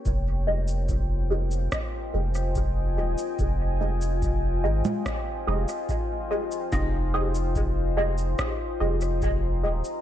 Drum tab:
SH |x--xx--xx--xx--x|x--xx--xx--xx--x|x--xx--xx--xx--x|
SD |--------r-------|--------r-------|--------r-------|
CG |----------------|-------O--------|----------------|
BD |o---o---o---o---|o---o---o---o---|o---o---o---o---|